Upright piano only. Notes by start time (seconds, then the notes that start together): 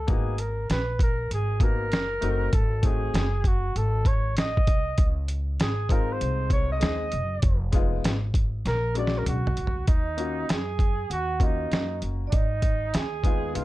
0.07 A#3 B3 D#4 F#4
1.60 A#3 B3 D#4 F#4
2.21 A3 C4 D#4 F#4
2.82 A3 C4 D#4 F#4
5.89 G#3 C4 D#4 F4
6.80 G#3 C4 D#4 G#4
7.72 G#3 B3 D#4 F4
8.95 G#3 C#4 D4 F#4
10.17 A#3 C#4 F4 F#4
11.40 A#3 C#4 F4 F#4
13.23 G#3 B3 D#4 F4
13.53 G#3 B3 D#4 F4